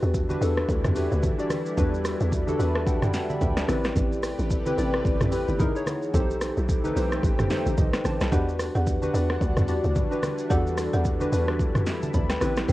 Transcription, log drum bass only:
0.03 0.36 E2 loud
0.41 0.65 E2 loud
0.69 0.82 D2 loud
0.84 1.08 E2 medium
1.12 1.22 D2 loud
1.78 2.15 E2 loud
2.21 2.55 E2 medium
2.59 3.07 E2 loud
3.41 3.65 D2 medium
3.69 3.92 A1 loud
3.96 4.33 A1 loud
4.39 4.73 A1 loud
4.78 5.01 A1 loud
5.05 5.19 G1 medium
5.21 5.45 A1 medium
5.48 5.58 G1 loud
6.14 6.52 B1 loud
6.57 6.91 B1 loud
6.96 7.20 B1 loud
7.23 7.37 A1 loud
7.39 7.49 G1 medium
7.66 7.76 A1 loud
7.78 7.92 B1 loud
8.05 8.19 A1 medium
8.21 8.31 B1 medium
8.32 8.70 E2 loud
8.75 9.09 E2 loud
9.14 9.38 E2 loud
9.41 9.55 D2 loud
9.57 9.81 E2 medium
9.84 9.94 D2 loud
10.50 10.88 E2 loud
10.93 11.27 E2 loud
11.32 11.80 E2 loud
12.14 12.38 D2 medium
12.41 12.65 A1 loud
12.69 12.73 A1 loud

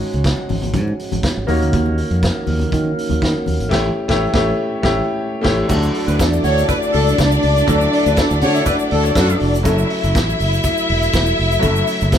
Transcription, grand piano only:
0.00 1.44 G#3 medium
0.00 1.45 D#4 medium
0.00 1.45 F#4 medium
0.00 1.46 C#5 medium
1.47 3.42 A#3 medium
1.47 3.43 D#4 medium
1.47 3.43 F#4 medium
1.47 3.44 C#5 medium
3.69 3.87 A3 medium
3.69 3.88 E4 medium
3.69 3.88 G4 medium
3.69 3.89 C#5 medium
4.08 4.25 A3 loud
4.08 4.26 E4 loud
4.08 4.26 G4 medium
4.08 4.27 C#5 loud
4.34 4.51 A3 loud
4.34 4.51 E4 loud
4.34 4.51 G4 medium
4.34 4.52 C#5 loud
4.82 5.00 A3 medium
4.82 5.00 E4 loud
4.82 5.01 G4 loud
4.82 5.01 C#5 medium
5.41 5.60 A3 loud
5.41 5.61 E4 medium
5.41 5.61 G4 loud
5.41 5.62 C#5 medium
5.69 7.63 F#3 medium
5.69 7.63 A3 medium
5.69 7.64 D4 medium
5.69 7.65 A4 medium
7.67 9.61 F#3 medium
7.67 9.61 A3 medium
7.67 9.62 D4 medium
7.67 9.14 A4 medium
8.42 8.54 F#5 medium
8.54 8.65 E5 medium
8.66 9.02 D5 medium
9.03 9.15 C#5 medium
9.15 9.61 A4 medium
9.63 11.58 F#3 medium
9.63 11.58 A3 medium
9.63 11.58 C#4 medium
9.63 11.59 E4 medium
9.63 11.59 A4 medium
11.59 12.18 F#3 medium
11.59 12.18 A3 medium
11.59 12.18 C#4 medium
11.59 12.18 E4 medium
11.59 12.18 A4 medium

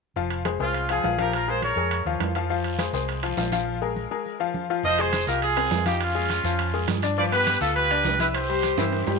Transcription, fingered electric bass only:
0.16 0.57 F1 medium
0.60 1.00 C2 medium
1.03 1.71 A#1 medium
1.76 2.04 F2 medium
2.05 2.19 D#2 medium
2.20 2.88 F2 medium
2.93 3.34 C2 medium
3.37 4.05 A#1 medium
4.83 5.24 F1 medium
5.27 5.68 C2 medium
5.71 6.39 F2 medium
6.43 6.85 F2 medium
6.88 7.56 G2 medium
7.61 8.02 D2 medium
8.04 8.72 C2 medium
8.77 9.05 G2 medium
9.07 9.19 G2 medium

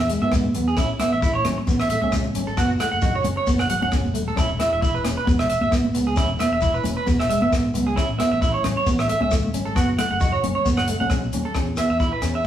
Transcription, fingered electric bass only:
0.00 0.16 E2 medium
0.22 0.48 G#2 medium
0.55 0.78 E2 medium
0.78 0.96 A1 medium
1.12 1.39 A1 medium
1.45 1.55 A1 medium
1.68 1.96 A1 medium
2.03 2.29 C#2 medium
2.35 2.58 G#1 medium
2.58 2.76 F#1 medium
2.93 3.19 F#1 medium
3.25 3.35 F#1 medium
3.47 3.66 F#1 medium
3.71 3.91 G#1 medium
3.92 4.13 F#1 medium
4.16 4.37 E1 medium
4.38 4.56 E1 medium
4.72 4.99 E1 medium
5.05 5.15 E1 medium
5.27 5.56 E1 medium
5.63 5.90 G#1 medium
5.96 6.19 C#2 medium
6.17 6.36 E1 medium
6.52 6.79 E1 medium
6.85 6.95 E1 medium
7.08 7.36 E1 medium
7.43 7.69 G#1 medium
7.75 7.98 C#2 medium
7.98 8.16 A1 medium
8.32 8.59 A1 medium
8.64 8.74 A1 medium
8.87 9.15 A1 loud
9.22 9.48 C#2 medium
9.54 9.76 G#1 medium
9.76 9.95 F#1 medium
10.11 10.38 F#1 medium
10.43 10.53 F#1 medium
10.66 10.94 F#1 medium
11.01 11.27 B1 medium
11.33 11.43 D#2 medium
11.56 11.84 E2 medium
11.90 12.08 E2 medium
12.22 12.47 E2 medium

